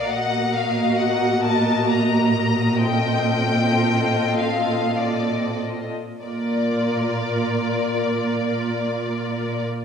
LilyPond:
<<
  \new Staff \with { instrumentName = "Violin section" } { \time 3/4 \key bes \major \tempo 4 = 52 ges''8 f''8 ges''8 a''8 bes''4 | g''4. f''8 d''8 r8 | d''2. | }
  \new Staff \with { instrumentName = "Violin section" } { \time 3/4 \key bes \major << { ees''2.~ | ees''2~ ees''8. r16 | d''2. | } \\ { bes'2. | a'2~ a'8. r16 | bes'2. | } >> }
  \new Staff \with { instrumentName = "Viola section" } { \time 3/4 \key bes \major <bes ges'>2. | <c' f'>2~ <c' f'>8. r16 | <bes f'>2. | }
  \new Staff \with { instrumentName = "Cello section" } { \clef bass \time 3/4 \key bes \major bes,2.~ | bes,2~ bes,8. r16 | bes,2. | }
>>